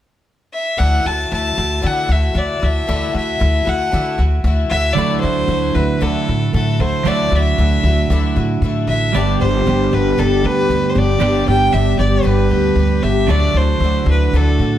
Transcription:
0.53 fiddle E5
0.77 upright bass D2, twelve-string acoustic guitar D3 E3 A3 E4 F#4, fiddle F#5
1.05 upright bass D2, twelve-string acoustic guitar A3 E4 F#4, fiddle A5
1.31 upright bass D2, twelve-string acoustic guitar E3 A3 E4 F#4, fiddle A5
1.57 upright bass D2, twelve-string acoustic guitar A3 E4 F#4
1.81 twelve-string acoustic guitar D3 E3 A3 E4 F#4, upright bass D3
1.86 fiddle F#5
2.09 upright bass D2, twelve-string acoustic guitar A3 E4 F#4, fiddle E5
2.33 upright bass D2, twelve-string acoustic guitar E3 A3 E4 F#4
2.37 fiddle D5
2.60 upright bass D2, twelve-string acoustic guitar A3 E4 F#4
2.64 fiddle E5
2.87 upright bass D2, twelve-string acoustic guitar D3 E3 A3 E4 F#4
3.13 upright bass D2, twelve-string acoustic guitar A3 E4 F#4, fiddle E5
3.39 upright bass D2, twelve-string acoustic guitar E3 A3 E4 F#4
3.65 upright bass D2, twelve-string acoustic guitar A3 E4 F#4, fiddle F#5
3.92 twelve-string acoustic guitar D3 E3 A3 E4 F#4, upright bass D3
4.18 upright bass D2, twelve-string acoustic guitar A3 E4 F#4
4.44 upright bass D2, twelve-string acoustic guitar E3 A3 E4 F#4
4.70 upright bass D2, twelve-string acoustic guitar E4 F#4, fiddle E5
4.74 twelve-string acoustic guitar A3
4.93 upright bass D2, twelve-string acoustic guitar D3, clean electric guitar F#3, fiddle D5
4.97 twelve-string acoustic guitar E3 A3 E4 F#4, clean electric guitar D4
5.20 upright bass D2, twelve-string acoustic guitar E4 F#4, fiddle C5
5.25 twelve-string acoustic guitar A3
5.48 upright bass D2, twelve-string acoustic guitar E3 A3 E4 F#4
5.74 upright bass D2, twelve-string acoustic guitar A3 E4 F#4, fiddle B4
6.01 upright bass D2, twelve-string acoustic guitar D3 E3 A3 E4 F#4, fiddle A4
6.28 upright bass A2, twelve-string acoustic guitar A3 E4 F#4
6.53 upright bass A2, twelve-string acoustic guitar E3 A3 E4 F#4, fiddle A4
6.80 upright bass D2, twelve-string acoustic guitar A3 E4 F#4, fiddle C5
7.05 upright bass D2, twelve-string acoustic guitar D3 E3 A3 E4 F#4, clean electric guitar F#3 D4, fiddle D5
7.31 upright bass D2, twelve-string acoustic guitar A3 E4 F#4
7.35 fiddle E5
7.58 upright bass D2, twelve-string acoustic guitar E3 A3 E4 F#4
7.83 upright bass D2, twelve-string acoustic guitar A3 E4 F#4
8.10 upright bass D2, twelve-string acoustic guitar D3 E3 A3 E4 F#4
8.36 upright bass A2, twelve-string acoustic guitar A3 E4 F#4
8.62 upright bass A2, twelve-string acoustic guitar E3 A3 E4 F#4
8.87 upright bass A1, twelve-string acoustic guitar A3 E4 F#4, fiddle E5
9.14 upright bass G1, twelve-string acoustic guitar G2 D3 G3 B3 D4 G4, fiddle D5
9.40 upright bass G1, twelve-string acoustic guitar G3 B3 D4 G4, fiddle C5
9.66 upright bass G1, twelve-string acoustic guitar G3 B3 D4 G4
9.91 upright bass G1, twelve-string acoustic guitar G3 B3 D4 G4, fiddle B4
10.18 upright bass G1, twelve-string acoustic guitar G2 D3 G3 B3 D4 G4, fiddle A4
10.43 upright bass D2, twelve-string acoustic guitar G3 B3 D4 G4, fiddle B4
10.69 upright bass D2, twelve-string acoustic guitar G3 B3 D4 G4
10.89 fiddle C5
10.94 upright bass G1, twelve-string acoustic guitar G3 B3 D4 G4, fiddle D5
11.20 upright bass G1, twelve-string acoustic guitar G2 D3 G3 B3 D4 G4
11.47 upright bass G1, twelve-string acoustic guitar G3 B3 D4 G4, fiddle G5
11.71 upright bass G1, twelve-string acoustic guitar G3 B3 D4 G4, fiddle E5
11.98 upright bass G1, twelve-string acoustic guitar G3 B3 D4 G4, fiddle D5
12.23 upright bass G1, twelve-string acoustic guitar G2 D3 G3 B3 D4 G4, fiddle B4
12.49 upright bass D2, twelve-string acoustic guitar G3 B3 D4 G4
12.76 upright bass D2, twelve-string acoustic guitar G3 B3 D4 G4
13.03 upright bass G1, twelve-string acoustic guitar G3 B3 D4 G4, fiddle E5
13.28 upright bass D2, twelve-string acoustic guitar D3 E3 A3 D4 F#4, clean electric guitar F#3 E4, fiddle D5
13.54 upright bass D2, twelve-string acoustic guitar D4 F#4, fiddle C5
13.59 twelve-string acoustic guitar A3
13.80 upright bass D2, twelve-string acoustic guitar E3 A3 D4
13.85 twelve-string acoustic guitar F#4
14.06 upright bass D2, twelve-string acoustic guitar D4 F#4
14.10 twelve-string acoustic guitar A3, fiddle B4
14.33 upright bass D2, twelve-string acoustic guitar D3 E3 A3 D4 F#4, fiddle A4
14.59 upright bass A2, twelve-string acoustic guitar A3 D4 F#4

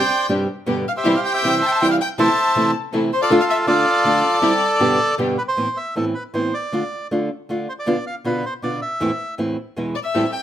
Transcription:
Already playing: bandoneon C5 D5 G5, violin G5
0.29 nylon-string guitar G2 C3 G3 C4 D4 G4, string section C4 D4 G4
0.66 nylon-string guitar G2 B2 D3 G3 B3 G4, string section B3 D4 G4
0.88 violin F5, bandoneon F5
0.97 bandoneon G4 C5 E5, violin E5
1.04 nylon-string guitar C3 E3 G3 C4 E4, string section C4 E4 G4
1.15 violin F5, bandoneon F5
1.25 violin G5, bandoneon G5
1.34 bandoneon C5 E5 G5, violin G5
1.43 nylon-string guitar C3 E3 G3 C4 E4, string section C4 E4 G4
1.62 bandoneon G5 A5, violin A5
1.67 violin G5
1.71 bandoneon A5, violin A5
1.81 nylon-string guitar C3 E3 G3 C4 E4, string section C4 E4 G4, bandoneon G5, violin G5
1.91 bandoneon F5, violin F5
2.00 bandoneon G5, violin G5
2.18 nylon-string guitar C3 E3 A3 C4 E4, string section C4 E4 A4, bandoneon C5 E5 A5, violin A5
2.56 nylon-string guitar C3 E3 A3 C4 E4, string section C4 E4 A4
2.93 nylon-string guitar C3 E3 A3 C4 E4, string section C4 E4 A4
3.13 violin C5, bandoneon C5
3.22 bandoneon F4 A4 D5, violin D5
3.30 nylon-string guitar D3 A3 D4 F4, string section D4 F4 A4
3.40 bandoneon F5, violin F5
3.49 bandoneon E5, violin E5
3.67 nylon-string guitar D3 A3 D4 F4, string section D4 F4 A4, bandoneon F4 A4 D5, violin D5
4.04 nylon-string guitar D3 A3 D4 F4, string section D4 F4 A4
4.42 nylon-string guitar G3 C4 E4, string section G3 C4 E4 G4
4.79 nylon-string guitar G2 B2 D3 G3 B3 G4, string section B3 D4 G4
5.18 nylon-string guitar G2 B2 D3 G3 B3 G4, string section B3 D4 G4
5.38 bandoneon B4
5.48 bandoneon C5
5.57 nylon-string guitar A2 E3 B3 C4 E4
5.77 bandoneon E5
5.95 nylon-string guitar A2 E3 B3 C4 E4, bandoneon A4
6.15 bandoneon B4
6.34 nylon-string guitar A2 E3 B3 C4 E4, bandoneon C5
6.54 bandoneon D5
6.72 nylon-string guitar D3 A3 D4 F4
7.11 nylon-string guitar D3 A3 D4 F4
7.49 nylon-string guitar D3 A3 D4 F4
7.69 bandoneon C5
7.79 bandoneon D5
7.86 nylon-string guitar B2 D3 B3 D4 F4
8.07 bandoneon F5
8.24 nylon-string guitar B2 D3 B3 D4 F4, bandoneon B4
8.46 bandoneon C5
8.62 nylon-string guitar B2 D3 B3 D4 F4, bandoneon D5
8.82 bandoneon E5
9.00 nylon-string guitar E2 A2 E3 A3 C4 E4
9.38 nylon-string guitar E2 A2 E3 A3 C4 E4
9.76 nylon-string guitar E2 B2 E3 G#3 B3 E4
9.95 bandoneon D5, violin D5
10.04 bandoneon E5, violin E5
10.14 nylon-string guitar A2 E3 G3 C4 E4, string section C4 G4 A4
10.32 violin G5, bandoneon G5

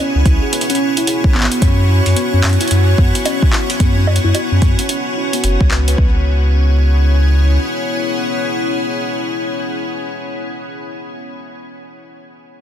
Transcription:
Already playing: ambient pad B3 C#4 E4 F#4 C#5
0.00 synth pluck C#4
0.15 sub bass C#2
0.26 sub bass C#2, synth pluck E4, kick, closed hi-hat
0.42 synth pluck G#4
0.53 synth pluck B3, closed hi-hat
0.61 closed hi-hat
0.70 synth pluck C#4, closed hi-hat
0.75 closed hi-hat
0.97 synth pluck E4, closed hi-hat
1.07 synth pluck G#4, closed hi-hat
1.24 synth pluck C#4, kick
1.35 sub bass G#1, synth pluck B3, clap
1.40 clap
1.44 clap
1.52 synth pluck B3, closed hi-hat
1.62 sub bass F#2, ambient pad C#4, synth pluck C#4, kick, closed hi-hat
1.89 synth pluck E4
2.06 sub bass F#2, synth pluck F#4, closed hi-hat
2.16 synth pluck B3, closed hi-hat
2.33 sub bass F#2, synth pluck C#4
2.44 sub bass F#2, clap, closed hi-hat
2.49 closed hi-hat
2.53 closed hi-hat
2.61 synth pluck E4, closed hi-hat
2.68 closed hi-hat
2.71 sub bass F#2, synth pluck F#4, closed hi-hat
2.88 synth pluck C#4
2.98 sub bass F#2, synth pluck B3, kick
3.15 synth pluck B3, closed hi-hat
3.26 synth pluck C#4, closed hi-hat, high bongo
3.42 kick
3.53 synth pluck E4, clap
3.70 synth pluck F#4, closed hi-hat
3.80 sub bass F#2, synth pluck B3, kick, closed hi-hat
3.97 synth pluck C#4
4.07 high bongo
4.16 closed hi-hat
4.24 sub bass F#2, synth pluck E4
4.35 synth pluck F#4, closed hi-hat, high bongo
4.52 sub bass F#2, synth pluck C#4
4.62 sub bass F#2, synth pluck B3, kick, closed hi-hat
4.79 synth pluck B3, closed hi-hat
4.89 synth pluck C#4, closed hi-hat
5.16 synth pluck E4
5.33 synth pluck B3, closed hi-hat
5.44 sub bass F#1, synth pluck C#4, closed hi-hat
5.61 sub bass C#2, synth pluck F#4, kick
5.71 synth pluck B4, clap
5.88 synth pluck B4, closed hi-hat
5.98 sub bass C#2, ambient pad B3 C#4 E4 G#4 C#5, synth pluck B3, kick

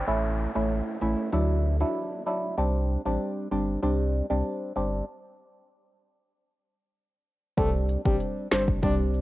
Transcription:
Already playing: downlifter
0.07 sub bass A1, synth stab A3 C#4 E4
0.55 sub bass A1, synth stab A3 C#4 E4
1.01 sub bass A1, synth stab A3 C#4 E4
1.32 sub bass D2, synth stab F#3 D4 E4
1.80 synth stab F#3 D4 E4
2.26 synth stab F#3 D4 E4
2.57 sub bass C2, synth stab G3 C4 D4
3.05 sub bass A1, synth stab G3 C4 D4
3.51 sub bass G1, synth stab G3 C4 D4
3.82 sub bass C2, synth stab G3 C4 D4
4.30 sub bass C2, synth stab G3 C4 D4
4.76 sub bass G1, synth stab G3 C4 D4
7.57 sub bass C2, synth stab G3 C4 D4, soft synth lead A4, kick, closed hi-hat
7.89 closed hi-hat
8.05 sub bass A1, synth stab G3 C4 D4, soft synth lead G4, kick
8.20 closed hi-hat
8.51 sub bass G1, synth stab G3 C4 D4, soft synth lead C5, finger snap, snare, closed hi-hat
8.68 kick
8.83 sub bass C2, synth stab G3 C4 D4, soft synth lead D5, kick, closed hi-hat
9.14 closed hi-hat

